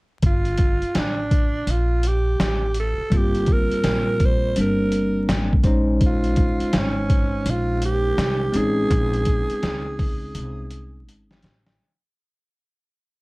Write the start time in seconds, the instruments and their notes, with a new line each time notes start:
0.22 upright bass G1, alto saxophone F4, kick, closed hi-hat
0.45 closed hi-hat
0.57 kick, closed hi-hat
0.82 muted upright bass stroke, closed hi-hat
0.95 upright bass A1, snare, closed hi-hat
0.99 alto saxophone D4
1.31 kick, closed hi-hat
1.67 upright bass A#1, closed hi-hat
1.71 alto saxophone F4
2.03 closed hi-hat
2.07 alto saxophone G4
2.40 upright bass A1, snare, closed hi-hat
2.74 closed hi-hat
2.80 alto saxophone A4
2.98 muted upright bass stroke
3.10 upright bass G1, tine electric piano G3 A#3 C4 F4, kick, closed hi-hat
3.17 alto saxophone G4
3.35 closed hi-hat
3.46 kick, closed hi-hat
3.53 alto saxophone A#4
3.71 muted upright bass stroke, closed hi-hat
3.84 upright bass A#1, snare, closed hi-hat
4.20 kick, closed hi-hat
4.25 alto saxophone C5
4.56 upright bass G1, tine electric piano G3 A#3 C4 D4, closed hi-hat
4.61 alto saxophone A#4
4.92 closed hi-hat
5.29 upright bass A1, snare, closed hi-hat
5.53 kick
5.64 upright bass A#1, tine electric piano G#3 C#4 D#4 C5, kick, closed hi-hat
6.01 kick, closed hi-hat
6.06 alto saxophone F4
6.24 closed hi-hat
6.36 kick, closed hi-hat
6.60 muted upright bass stroke, closed hi-hat
6.73 upright bass G#1, snare, closed hi-hat
6.78 alto saxophone C#4
7.10 kick, closed hi-hat
7.46 upright bass A#1, closed hi-hat
7.50 alto saxophone F4
7.82 alto saxophone G4, closed hi-hat
8.18 upright bass C2, snare, closed hi-hat
8.52 upright bass A1, tine electric piano G#3 C4 C#4 D#4, closed hi-hat
8.57 alto saxophone G#4
8.91 upright bass A#1, kick, closed hi-hat
9.13 closed hi-hat
9.25 kick, closed hi-hat
9.50 muted upright bass stroke, closed hi-hat
9.63 upright bass C#2, snare, closed hi-hat
9.99 kick, open hi-hat
10.35 upright bass C2, closed hi-hat
10.71 closed hi-hat
11.07 upright bass G#1, closed hi-hat
11.31 snare
11.42 upright bass A1, snare, closed hi-hat
11.66 snare